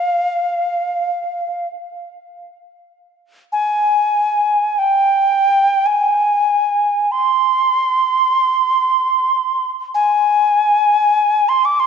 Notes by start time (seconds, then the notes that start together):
Already playing: F5
3.52 G#5
4.79 G5
5.86 G#5
7.12 C6
9.95 G#5
11.49 C6
11.65 D6
11.80 C6